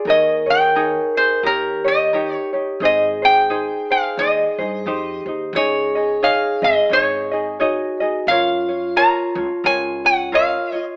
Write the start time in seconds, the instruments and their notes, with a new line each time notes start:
0.05 upright bass D#2, ukulele D#4 G#4 A#4 C#5, vibraphone A#4
0.10 resonator guitar played with a steel bar D#5
0.46 ukulele D#4 G#4 C#5
0.50 resonator guitar played with a steel bar G5
0.75 ukulele D#4 G#4 A#4 C#5
1.17 ukulele D#4 G#4, resonator guitar played with a steel bar C5
1.43 upright bass D#2, ukulele D#4 G4 A#4 C#5, vibraphone G4, resonator guitar played with a steel bar A#4
1.84 ukulele D#4 G4 C#5, resonator guitar played with a steel bar D#5
2.13 ukulele D#4 G4 A#4 C#5
2.35 resonator guitar played with a steel bar C#5
2.53 ukulele D#4 G4 C#5
2.80 upright bass G#1, ukulele D#4 G#4 C5, vibraphone G#4
2.85 resonator guitar played with a steel bar D#5
3.22 ukulele D#4 G#4 C5, resonator guitar played with a steel bar G5
3.50 ukulele D#4 G#4 C5
3.91 ukulele D#4 G#4 C5, resonator guitar played with a steel bar F5
4.17 upright bass D#2, ukulele D#4 G#4 C5, resonator guitar played with a steel bar D#5
4.58 upright bass G2, ukulele D#4 G#4 C5
4.86 upright bass F2, ukulele D#4 G4 C5, vibraphone G4
5.26 upright bass D#2, ukulele D#4 C5
5.53 upright bass C#2, ukulele D#4 G#4 C#5, vibraphone G#4, resonator guitar played with a steel bar C#5
5.57 ukulele D#5
5.95 ukulele D#4 G#4 D#5
6.23 ukulele D#4 G#4 C#5 D#5, resonator guitar played with a steel bar F5
6.62 upright bass G#1, ukulele D#4 G#4 D#5, resonator guitar played with a steel bar D#5
6.90 upright bass G#1, ukulele D#4 G#4 C#5, resonator guitar played with a steel bar C#5
6.94 ukulele D#5
7.31 ukulele D#4 G#4 D#5
7.60 ukulele D#4 G#4 C#5 D#5, vibraphone F#4
8.00 ukulele D#4 G#4 D#5
8.27 upright bass F#2, vibraphone F4, ukulele F4 A#4 C#5, resonator guitar played with a steel bar F5
8.69 ukulele F4 C#5
8.96 ukulele F4 A#4 C#5, resonator guitar played with a steel bar A#5
9.35 upright bass C#2, ukulele F4 C#5
9.64 upright bass C#2, ukulele F4 A#4 C#5, resonator guitar played with a steel bar G#5
10.05 ukulele C#5, resonator guitar played with a steel bar F#5
10.32 ukulele F4 A#4 C#5, resonator guitar played with a steel bar F5
10.72 ukulele F4 C#5